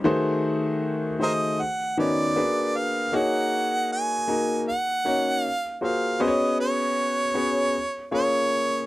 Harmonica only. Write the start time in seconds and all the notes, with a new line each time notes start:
1.23 A#4 C5 D#5
1.61 F#5
1.99 D5
2.77 F5
3.15 F#5
3.92 G#5
4.69 F#5
5.42 F5
5.84 F5
6.22 D#5
6.61 C#5
8.15 C#5